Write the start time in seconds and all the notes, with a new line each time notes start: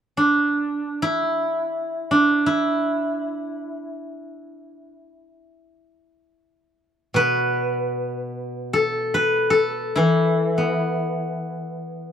0.17 D4
1.02 E4
2.11 D4
2.46 E4
7.14 B2 B4
8.73 A4
9.14 B4
9.50 A4
9.96 E3 E4
10.58 B3